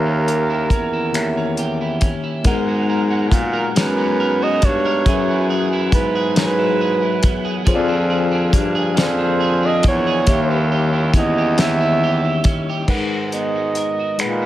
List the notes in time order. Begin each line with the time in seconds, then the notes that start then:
Already playing: D#2 D#3 A#3 G4 A#4 C#5 E5
0.06 C#4
0.28 G4, closed hi-hat
0.50 E4
0.70 E2 C#4, kick, closed hi-hat
0.93 E4
1.12 D#3 A#3 G4 C#5 E5, finger snap, closed hi-hat
1.37 C#4
1.57 G4, closed hi-hat
1.81 E4
2.01 C#4, kick, closed hi-hat
2.24 E4
2.44 G#2 F#3 G#3 B3 D#4 F#4 G#4 A#4 F#5, kick, closed hi-hat
2.68 F#4
2.90 A#4
3.11 F#4
3.31 A#2 B3, kick, closed hi-hat
3.53 A#4
3.76 F#2 G#3 B3 D#4 G#4 A#4 B4 C#5, snare, closed hi-hat
3.98 F#4
4.20 A#4
4.42 F#4 D#5
4.62 G2 B3 C#5, kick, closed hi-hat
4.85 A#4
5.06 F#2 E3 F#3 F#4 G#4 A#4 E5, kick, closed hi-hat
5.14 B4
5.29 E4
5.50 G#4
5.73 E4
5.92 G#2 B3 B4, kick, closed hi-hat
6.15 G#4
6.36 F#3 F#4 G#4 A#4 B4 C#5, snare, closed hi-hat
6.44 B4
6.59 E4
6.81 G#4
7.02 E4
7.23 B3, kick, closed hi-hat
7.45 G#4
7.65 F2 D3 F3 A#3 F4 G#4 C5 C#5, kick, closed hi-hat
7.75 D5
7.88 D4
8.10 G#4
8.31 D4
8.53 G2 A#3, kick, closed hi-hat
8.75 G#4
8.96 F2 F3 F4 G#4 C5 D5, snare, closed hi-hat
9.00 C5
9.19 D4
9.41 G#4
9.63 D4 D#5
9.83 E2 A#3, kick, closed hi-hat
9.88 C#5
10.07 G#4
10.26 D#2 D#3 G3 A#3 C#4 E4 G4 C#5 E5, kick, closed hi-hat
10.51 E4
10.72 G4
10.93 E4
11.14 E2 C#4, kick, closed hi-hat
11.18 D#5
11.38 G4
11.57 D#3 A#3 G4 C#5 D#5 E5, snare, closed hi-hat
11.66 E5
11.81 E4
12.04 G4
12.25 E4
12.44 C#4, kick, closed hi-hat
12.69 G4
12.87 G#2 G#3 D#4 A#4 B4 F#5, kick, crash
13.11 F#4
13.32 B3 D#5, closed hi-hat
13.56 F#4
13.75 A#4, closed hi-hat
14.00 F#4
14.18 A#2 G#3 D#4 G#4 B4 D#5 F#5, finger snap, closed hi-hat
14.42 F#4